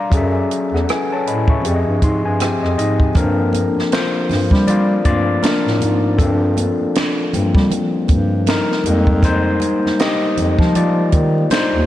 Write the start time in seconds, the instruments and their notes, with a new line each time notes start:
Already playing: tine electric piano F5 A#5 C6 D6
0.00 tine electric piano D5
0.10 bass clarinet F#2, tine electric piano F#3 C#4 G#4, kick, closed hi-hat
0.15 tine electric piano A4 E5
0.51 closed hi-hat
0.72 bass clarinet E2, tine electric piano A4 F#5, cross-stick
0.89 tine electric piano B4 G#5, cross-stick, closed hi-hat
1.12 tine electric piano C#5 A5
1.26 bass clarinet A2, tine electric piano D#5 B5, closed hi-hat
1.48 tine electric piano E5 C#6, kick
1.61 bass clarinet F2, tine electric piano F3 C4 G4, closed hi-hat
1.66 tine electric piano G#4 D5
1.74 tine electric piano D#5
1.87 bass clarinet G2
2.02 bass clarinet G#2, tine electric piano C6, kick, closed hi-hat
2.24 bass clarinet G2, tine electric piano G#5
2.40 tine electric piano C4 G4 G5, cross-stick, closed hi-hat
2.63 bass clarinet F2, tine electric piano D#5, cross-stick
2.78 bass clarinet G#2, tine electric piano D#5, closed hi-hat
3.00 kick
3.15 bass clarinet G2, tine electric piano F3 A#3 C4 D4 A4 A#4, kick, closed hi-hat, muted conga, low conga
3.53 closed hi-hat, muted conga, high conga
3.76 bass clarinet G2, snare
3.92 tine electric piano F4 C5, finger snap, snare, closed hi-hat, muted conga
4.29 bass clarinet G2, snare, open hi-hat, low conga
4.51 bass clarinet G3, kick, snare
4.67 tine electric piano F4 D5, closed hi-hat, low conga
5.05 bass clarinet G2, tine electric piano F3 A3 A#3 C4 F4 D5, kick, closed hi-hat, muted conga, high conga
5.43 tine electric piano D4 A#4, finger snap, snare, closed hi-hat, muted conga, high conga
5.66 bass clarinet A2, snare
5.81 bass clarinet G#2, closed hi-hat, muted conga, high conga
6.18 bass clarinet G2, tine electric piano C4 A4, kick, closed hi-hat, muted conga, low conga
6.57 closed hi-hat, muted conga, high conga
6.81 bass clarinet G2
6.95 finger snap, snare, closed hi-hat, muted conga
7.33 bass clarinet G2, tine electric piano F3 G3 A#3 C4, closed hi-hat, muted conga, low conga
7.55 bass clarinet G3, kick, snare
7.71 closed hi-hat, muted conga, low conga
8.08 bass clarinet G2, kick, closed hi-hat, high conga
8.47 tine electric piano D#4 A#4, finger snap, snare, closed hi-hat, high conga
8.72 snare
8.84 bass clarinet F2, tine electric piano G3 G#3 A#3 D#4, closed hi-hat, muted conga, high conga
9.07 kick
9.23 tine electric piano D#4 C5, kick, closed hi-hat, muted conga, low conga
9.60 closed hi-hat, muted conga, high conga
9.84 bass clarinet F2, snare
9.99 tine electric piano G4 D#5, finger snap, snare, closed hi-hat, muted conga
10.37 bass clarinet F2, closed hi-hat, low conga
10.59 bass clarinet F3, kick, snare
10.75 tine electric piano F4 D5, closed hi-hat, muted conga, low conga
11.12 bass clarinet D#3, kick, closed hi-hat, high conga
11.50 tine electric piano D#4 C5, finger snap, snare, closed hi-hat, muted conga, high conga
11.74 bass clarinet D#2